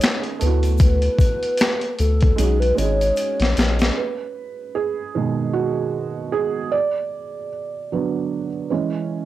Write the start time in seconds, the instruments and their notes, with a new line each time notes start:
Already playing: felt piano G#3 C#4 D#4 G#4, soft synth lead C#5
0.01 finger snap, snare, closed hi-hat, shaker
0.23 closed hi-hat
0.39 analog synth bass D2, felt piano A3 B3, closed hi-hat, shaker
0.44 felt piano E4 F#4
0.63 closed hi-hat, shaker
0.78 soft synth lead B4, kick, closed hi-hat, shaker
1.02 closed hi-hat
1.19 kick, closed hi-hat, shaker
1.43 closed hi-hat
1.57 snare, closed hi-hat, shaker
1.62 finger snap
1.81 closed hi-hat
1.99 analog synth bass D2, soft synth lead A4, closed hi-hat, shaker
2.21 kick, closed hi-hat
2.36 analog synth bass B1, felt piano G#3 C#4, soft synth lead G#4, closed hi-hat, shaker
2.41 felt piano D#4 F#4
2.60 soft synth lead B4, closed hi-hat
2.75 analog synth bass G#1, felt piano G#3 C#4, soft synth lead C#5, closed hi-hat, shaker
2.80 felt piano D#4 G#4
3.01 closed hi-hat, shaker
3.16 closed hi-hat, shaker
3.40 analog synth bass A#1, snare, closed hi-hat
3.57 analog synth bass A#1, snare, closed hi-hat, shaker
3.79 snare, closed hi-hat, shaker
3.97 felt piano B4
4.75 felt piano G#4
5.15 felt piano B2 D#3 G#3
5.53 felt piano F#4
6.32 felt piano G#4
6.71 felt piano D5
7.92 felt piano D3 F#3 B3
8.70 felt piano E3 G#3 C#4